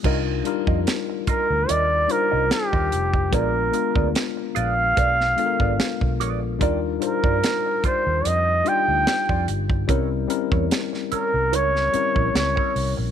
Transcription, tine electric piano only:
X:1
M:4/4
L:1/8
Q:"Swing 16ths" 1/4=73
K:Cm
V:1 name="Tine electric piano"
[G,DEFB] [G,DEFB]4 [G,DEFc]3 | [A,_CDFB] [A,CDFB]4 [A,CDF=AB]3 | [G,DEFB] [G,DEFc]4 [G,DEFG]3 | [G,C_D=EB] [G,CDEB]4 [G,CDEB]3 |]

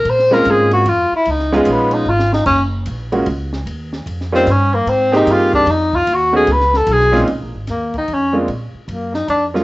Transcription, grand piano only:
X:1
M:3/4
L:1/8
Q:"Swing" 1/4=149
K:Bbm
V:1 name="Grand piano"
z [A,B,CDF]3 z2 | z [A,_CDEF]3 z2 | z3 [A,B,DFG] z2 | z3 [=G,B,DEF] z2 |
z [B,CE=GA]3 z2 | z [=A,=B,^C^D^F] z3 [_B,,_A,=C^CD=F] | z4 z [A,B,C=DF] | z4 z [G,A,B,DF] |]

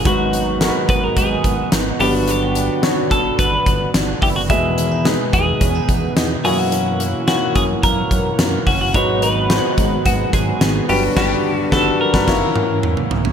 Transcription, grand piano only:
X:1
M:4/4
L:1/16
Q:1/4=108
K:G#m
V:1 name="Grand piano"
[G,DFB]3 z [G,DFAB]4- [G,DFAB] z4 z [B,=DBf]2- | [B,=DBf]3 z [F,DFc]4- [F,DFc] z6 z | [G,Bde]3 z [G,DGB]4- [G,DGB] z4 z [A,EFc]2- | [A,EFc]3 z [A,EFc]4- [A,EFc] z6 z |
[G,DFB]3 z [G,DF=c^c]4- [G,DF=c^c] z4 z [=G,=DFB]2 | [=G,,=G,=DFB]2 z2 [G,DFB]2 z [G,DFB] [A,EFc]2 z6 |]
V:2 name="Grand piano" clef=bass
G,,6 z8 =G,,2- | =G,,4 z12 | B,,6 z8 z2 | z16 |
G,,6 z8 =G,,2 | z16 |]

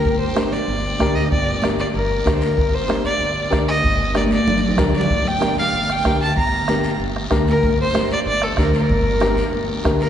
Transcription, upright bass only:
X:1
M:4/4
L:1/8
Q:1/4=190
K:Gm
V:1 name="Upright bass" clef=bass
G,,,4 G,,,2 D,,2 | G,,,4 G,,,2 D,,2 | G,,,4 G,,,2 D,,2 | G,,,4 G,,,2 D,,2 |
G,,,4 G,,,2 D,,2 | G,,,4 G,,,2 D,,2 | G,,,4 G,,,2 D,,2 | G,,,4 G,,,2 D,,2 |]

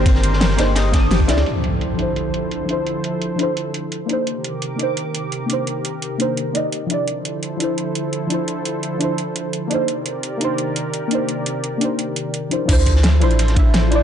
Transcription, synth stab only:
X:1
M:4/4
L:1/8
Q:1/4=171
K:Dphr
V:1 name="Synth stab"
[E,B,Dc]3 [B,DEc]2 [E,B,e']2 [F,D=Ed]- | [F,D=Ed] z2 [F,DEc]4 [F,DEc]- | [F,D=Ec]3 [F,DEc]4 [B,D_Ec]- | [B,DEc]3 [B,DEc]4 [B,DEc]- |
[B,DEc]3 [B,DEc]2 [B,Ede]2 [F,D=Ed]- | [F,D=Ed]3 [F,DEc]4 [F,DEc]- | [F,D=Ec]3 [F,DEc]4 [B,D_Ec]- | [B,DEc]3 [B,DEc]4 [B,DEc]- |
[B,DEc]3 [B,DEc]4 [F,D=Ec] | [F,D=Ec]3 [F,DEc]2 [F,DE=e]2 [F,DEd] |]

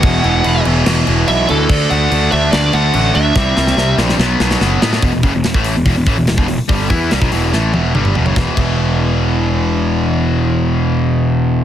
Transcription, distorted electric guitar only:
X:1
M:4/4
L:1/16
Q:1/4=144
K:Em
V:1 name="Distorted electric guitar" clef=bass
[E,,B,,E,]2 [E,,B,,E,]2 [E,,B,,E,]2 [E,,B,,E,]2 [E,,B,,E,]2 [E,,B,,E,]2 [E,,B,,E,]2 [E,,B,,E,]2 | [D,A,D]2 [D,A,D]2 [D,A,D]2 [D,A,D]2 [D,A,D]2 [D,A,D]2 [D,A,D]2 [D,A,D]2 | [C,G,C]2 [C,G,C]2 [C,G,C]2 [C,G,C]2 [B,,F,B,]2 [B,,F,B,]2 [B,,F,B,]2 [B,,F,B,]2 | [E,,B,,] [E,,B,,] [F,,^C,] [E,,B,,] [E,,B,,] [A,,E,A,]2 [E,,B,,] [E,,B,,] [E,,B,,] [A,,E,] [E,,B,,] [E,,B,,] [E,,B,,] [E,,B,,] z |
[G,,D,G,]2 [E,B,E]2 [C,G,] [B,,F,] [E,,B,,E,]2 [A,,E,A,]2 [E,,B,,E,]2 [G,,D,G,]2 [E,,B,,] [F,,^C,] | [E,,B,,E,] z [E,,B,,E,]12- [E,,B,,E,]2- | [E,,B,,E,]16 |]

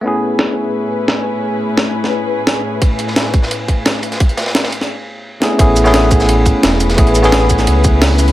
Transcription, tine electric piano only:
X:1
M:4/4
L:1/16
Q:1/4=173
K:A
V:1 name="Tine electric piano"
[A,B,CEG]16- | [A,B,CEG]16- | [A,B,CEG]16- | [A,B,CEG]12- [A,B,CEG]2 [A,B,CEG]2 |
[A,B,CEG]3 [A,B,CEG] z12 | [A,B,CEG]3 [A,B,CEG] z12 |]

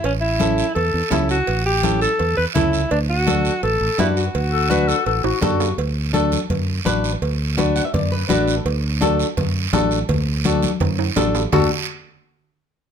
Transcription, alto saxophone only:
X:1
M:4/4
L:1/8
Q:1/4=167
K:D
V:1 name="Alto saxophone"
C E3 A2 E F- | F G2 A2 B E2 | D F3 A2 E F- | F6 z2 |
z8 | z8 | z8 | z8 |
z8 |]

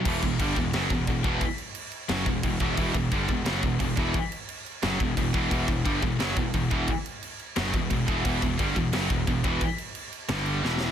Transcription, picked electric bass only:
X:1
M:4/4
L:1/8
Q:1/4=176
K:Em
V:1 name="Picked electric bass" clef=bass
E,,, E,,, G,,, E,,, F,,, E,,, E,,, E,,, | z4 F,,, E,,, E,,, E,,, | E,,, E,,, G,,, E,,, F,,, E,,, E,,, E,,, | z4 F,,, E,,, E,,, E,,, |
E,,, E,,, G,,, E,,, F,,, E,,, E,,, E,,, | z4 F,,, E,,, E,,, E,,, | E,,, E,,, G,,, E,,, F,,, E,,, E,,, E,,, | z4 G,,,2 E,,,2 |]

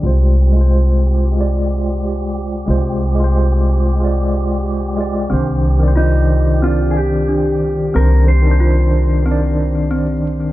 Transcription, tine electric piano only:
X:1
M:4/4
L:1/16
Q:"Swing 16ths" 1/4=91
K:Cm
V:1 name="Tine electric piano"
[A,Fc]3 [A,Fc]4- [A,Fc] [A,Fd]8 | [A,Fc]3 [A,Fc]4- [A,Fc] [A,Fd]6 [A,Fd]2 | [E,Dc]3 [E,cd]4- [E,cd] [E,Dd]8 | [E,Dc]3 [E,Dc]4- [E,Dc] [E,Dd]8 |]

